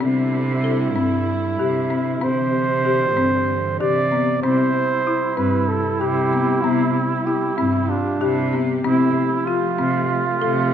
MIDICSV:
0, 0, Header, 1, 6, 480
1, 0, Start_track
1, 0, Key_signature, 0, "major"
1, 0, Tempo, 630915
1, 9, Time_signature, 7, 3, 24, 8
1, 8169, End_track
2, 0, Start_track
2, 0, Title_t, "Flugelhorn"
2, 0, Program_c, 0, 56
2, 10, Note_on_c, 0, 64, 86
2, 1699, Note_on_c, 0, 72, 96
2, 1711, Note_off_c, 0, 64, 0
2, 2884, Note_off_c, 0, 72, 0
2, 2888, Note_on_c, 0, 74, 94
2, 3339, Note_off_c, 0, 74, 0
2, 3368, Note_on_c, 0, 72, 88
2, 4085, Note_on_c, 0, 71, 72
2, 4097, Note_off_c, 0, 72, 0
2, 4321, Note_on_c, 0, 69, 70
2, 4332, Note_off_c, 0, 71, 0
2, 4565, Note_on_c, 0, 67, 82
2, 4577, Note_off_c, 0, 69, 0
2, 5038, Note_on_c, 0, 64, 76
2, 5049, Note_off_c, 0, 67, 0
2, 5269, Note_off_c, 0, 64, 0
2, 5274, Note_on_c, 0, 64, 66
2, 5518, Note_on_c, 0, 67, 70
2, 5529, Note_off_c, 0, 64, 0
2, 5757, Note_on_c, 0, 64, 67
2, 5768, Note_off_c, 0, 67, 0
2, 6001, Note_on_c, 0, 65, 73
2, 6012, Note_off_c, 0, 64, 0
2, 6238, Note_off_c, 0, 65, 0
2, 6243, Note_on_c, 0, 64, 67
2, 6581, Note_off_c, 0, 64, 0
2, 8169, End_track
3, 0, Start_track
3, 0, Title_t, "Duduk"
3, 0, Program_c, 1, 69
3, 3360, Note_on_c, 1, 64, 86
3, 6010, Note_on_c, 1, 62, 81
3, 6022, Note_off_c, 1, 64, 0
3, 6525, Note_off_c, 1, 62, 0
3, 6719, Note_on_c, 1, 64, 94
3, 7206, Note_on_c, 1, 65, 93
3, 7218, Note_off_c, 1, 64, 0
3, 8169, Note_off_c, 1, 65, 0
3, 8169, End_track
4, 0, Start_track
4, 0, Title_t, "Marimba"
4, 0, Program_c, 2, 12
4, 4, Note_on_c, 2, 60, 72
4, 332, Note_off_c, 2, 60, 0
4, 487, Note_on_c, 2, 69, 61
4, 651, Note_off_c, 2, 69, 0
4, 727, Note_on_c, 2, 60, 70
4, 1055, Note_off_c, 2, 60, 0
4, 1213, Note_on_c, 2, 67, 65
4, 1375, Note_off_c, 2, 67, 0
4, 1448, Note_on_c, 2, 60, 61
4, 1612, Note_off_c, 2, 60, 0
4, 1684, Note_on_c, 2, 60, 73
4, 2013, Note_off_c, 2, 60, 0
4, 2169, Note_on_c, 2, 67, 57
4, 2333, Note_off_c, 2, 67, 0
4, 2411, Note_on_c, 2, 60, 66
4, 2737, Note_off_c, 2, 60, 0
4, 2895, Note_on_c, 2, 67, 67
4, 3057, Note_off_c, 2, 67, 0
4, 3132, Note_on_c, 2, 59, 56
4, 3294, Note_off_c, 2, 59, 0
4, 3374, Note_on_c, 2, 60, 74
4, 3699, Note_off_c, 2, 60, 0
4, 3857, Note_on_c, 2, 64, 58
4, 4018, Note_off_c, 2, 64, 0
4, 4087, Note_on_c, 2, 60, 62
4, 4414, Note_off_c, 2, 60, 0
4, 4573, Note_on_c, 2, 67, 67
4, 4735, Note_off_c, 2, 67, 0
4, 4816, Note_on_c, 2, 59, 56
4, 4977, Note_off_c, 2, 59, 0
4, 5053, Note_on_c, 2, 59, 78
4, 5379, Note_off_c, 2, 59, 0
4, 5530, Note_on_c, 2, 64, 58
4, 5693, Note_off_c, 2, 64, 0
4, 5766, Note_on_c, 2, 60, 67
4, 6094, Note_off_c, 2, 60, 0
4, 6247, Note_on_c, 2, 67, 70
4, 6411, Note_off_c, 2, 67, 0
4, 6491, Note_on_c, 2, 59, 57
4, 6654, Note_off_c, 2, 59, 0
4, 6729, Note_on_c, 2, 60, 80
4, 7056, Note_off_c, 2, 60, 0
4, 7207, Note_on_c, 2, 65, 63
4, 7371, Note_off_c, 2, 65, 0
4, 7444, Note_on_c, 2, 60, 63
4, 7773, Note_off_c, 2, 60, 0
4, 7924, Note_on_c, 2, 69, 67
4, 8089, Note_off_c, 2, 69, 0
4, 8169, End_track
5, 0, Start_track
5, 0, Title_t, "String section"
5, 0, Program_c, 3, 48
5, 0, Note_on_c, 3, 50, 70
5, 7, Note_on_c, 3, 64, 75
5, 12, Note_on_c, 3, 55, 61
5, 1662, Note_off_c, 3, 50, 0
5, 1672, Note_off_c, 3, 64, 0
5, 1675, Note_off_c, 3, 55, 0
5, 1694, Note_on_c, 3, 48, 74
5, 1694, Note_on_c, 3, 50, 69
5, 1694, Note_on_c, 3, 52, 63
5, 3355, Note_off_c, 3, 52, 0
5, 3356, Note_off_c, 3, 48, 0
5, 3356, Note_off_c, 3, 50, 0
5, 3381, Note_on_c, 3, 48, 62
5, 3381, Note_on_c, 3, 55, 59
5, 3381, Note_on_c, 3, 67, 66
5, 6705, Note_off_c, 3, 48, 0
5, 6705, Note_off_c, 3, 55, 0
5, 6742, Note_on_c, 3, 57, 68
5, 6751, Note_on_c, 3, 53, 64
5, 8169, Note_off_c, 3, 53, 0
5, 8169, Note_off_c, 3, 57, 0
5, 8169, Note_off_c, 3, 67, 0
5, 8169, End_track
6, 0, Start_track
6, 0, Title_t, "Cello"
6, 0, Program_c, 4, 42
6, 9, Note_on_c, 4, 48, 90
6, 733, Note_on_c, 4, 43, 81
6, 744, Note_off_c, 4, 48, 0
6, 1156, Note_off_c, 4, 43, 0
6, 1210, Note_on_c, 4, 48, 69
6, 1635, Note_off_c, 4, 48, 0
6, 1689, Note_on_c, 4, 48, 80
6, 2410, Note_on_c, 4, 43, 73
6, 2421, Note_off_c, 4, 48, 0
6, 2835, Note_off_c, 4, 43, 0
6, 2893, Note_on_c, 4, 48, 69
6, 3317, Note_off_c, 4, 48, 0
6, 3374, Note_on_c, 4, 48, 73
6, 3585, Note_off_c, 4, 48, 0
6, 4092, Note_on_c, 4, 43, 77
6, 4304, Note_off_c, 4, 43, 0
6, 4575, Note_on_c, 4, 48, 70
6, 4998, Note_off_c, 4, 48, 0
6, 5051, Note_on_c, 4, 48, 77
6, 5263, Note_off_c, 4, 48, 0
6, 5773, Note_on_c, 4, 43, 75
6, 5984, Note_off_c, 4, 43, 0
6, 6250, Note_on_c, 4, 48, 77
6, 6675, Note_off_c, 4, 48, 0
6, 6730, Note_on_c, 4, 48, 82
6, 6943, Note_off_c, 4, 48, 0
6, 7448, Note_on_c, 4, 48, 77
6, 7661, Note_off_c, 4, 48, 0
6, 7926, Note_on_c, 4, 48, 76
6, 8169, Note_off_c, 4, 48, 0
6, 8169, End_track
0, 0, End_of_file